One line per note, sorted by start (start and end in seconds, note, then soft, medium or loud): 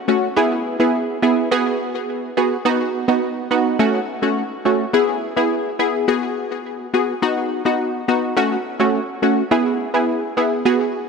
0.08 0.28 A3 medium
0.08 0.28 C#4 medium
0.08 0.29 F#4 medium
0.36 0.76 B3 medium
0.36 0.76 E4 medium
0.36 0.76 G#4 loud
0.80 1.19 B3 medium
0.80 1.19 E4 medium
0.80 1.19 G#4 medium
1.22 1.49 B3 medium
1.22 1.49 E4 medium
1.22 1.49 G#4 medium
1.51 2.30 B3 medium
1.51 2.30 F#4 medium
1.51 2.30 G#4 loud
2.37 2.57 B3 medium
2.37 2.57 F#4 medium
2.37 2.57 G#4 medium
2.65 3.05 B3 medium
2.65 3.05 D#4 medium
2.65 3.05 F#4 loud
3.08 3.48 B3 medium
3.08 3.48 D#4 medium
3.08 3.48 F#4 medium
3.51 3.77 B3 medium
3.51 3.78 D#4 medium
3.51 3.78 F#4 medium
3.79 4.00 A3 loud
3.79 4.00 C#4 medium
3.79 4.00 F#4 loud
4.22 4.43 A3 medium
4.22 4.43 C#4 medium
4.22 4.43 F#4 medium
4.65 4.85 A3 medium
4.65 4.86 C#4 medium
4.65 4.86 F#4 medium
4.93 5.33 B3 medium
4.93 5.33 E4 medium
4.93 5.34 G#4 loud
5.37 5.76 B3 medium
5.37 5.76 E4 medium
5.37 5.77 G#4 medium
5.79 6.06 B3 medium
5.79 6.06 E4 medium
5.79 6.06 G#4 medium
6.08 6.87 B3 loud
6.08 6.87 F#4 medium
6.08 6.87 G#4 loud
6.94 7.14 B3 medium
6.94 7.14 F#4 medium
6.94 7.14 G#4 medium
7.22 7.62 B3 medium
7.22 7.62 D#4 medium
7.22 7.62 F#4 loud
7.65 8.05 B3 medium
7.65 8.05 D#4 medium
7.65 8.05 F#4 medium
8.08 8.35 B3 medium
8.08 8.35 D#4 medium
8.08 8.35 F#4 medium
8.37 8.57 A3 loud
8.37 8.57 C#4 medium
8.37 8.57 F#4 loud
8.80 9.00 A3 medium
8.80 9.00 C#4 medium
8.80 9.00 F#4 medium
9.22 9.43 A3 medium
9.22 9.43 C#4 medium
9.22 9.43 F#4 medium
9.51 9.91 B3 medium
9.51 9.91 E4 medium
9.51 9.91 G#4 loud
9.94 10.33 B3 medium
9.94 10.34 E4 medium
9.94 10.34 G#4 medium
10.37 10.63 B3 medium
10.37 10.63 E4 medium
10.37 10.64 G#4 medium
10.65 11.09 B3 loud
10.65 11.09 F#4 medium
10.65 11.09 G#4 loud